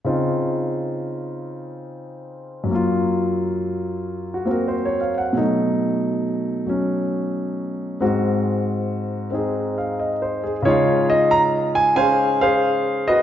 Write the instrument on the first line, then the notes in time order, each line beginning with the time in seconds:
grand piano
0.04 C#3 C4 D#4 F4
2.64 F#2 F#3
2.71 A#3 F4
4.34 F#4
4.45 A#3 C4 F#4
4.51 A#4
4.68 C5
4.85 C#5
5.01 F5
5.18 F#5
5.33 B2 F#3 A3
5.38 D#4
6.66 F#3 C#4
8.01 G#2 G#3 C4 F#4
9.31 C4 D#4 G#4
9.78 F5
10.00 D#5
10.22 C5
10.44 G#4
10.62 C#3 G#3 D#4 F4 G#4 C#5
10.68 F5
11.10 D#5
11.31 A#5
11.75 G#5
11.95 C#4 G#4 C5 F5 G#5
12.41 G#4 C5 F5
13.08 F#4 B4 D#5